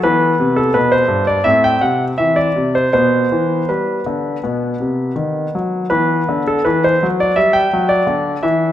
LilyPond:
<<
  \new Staff \with { instrumentName = "Grand piano" } { \time 4/4 \key e \minor \tempo 4 = 82 b'8. a'16 b'16 c''8 d''16 e''16 g''16 fis''8 e''16 d''8 c''16 | c''4 b'2~ b'8 r8 | b'8. a'16 b'16 c''8 d''16 e''16 g''8 d''8. e''8 | }
  \new Staff \with { instrumentName = "Grand piano" } { \clef bass \time 4/4 \key e \minor << { b2 c'2 | b2 b2 | b1 | } \\ { e8 c8 b,8 g,8 a,8 c8 e8 c8 | b,8 e8 g8 d8 b,8 c8 dis8 fis8 | e8 d8 e8 fis8 g8 fis8 d8 e8 | } >> }
>>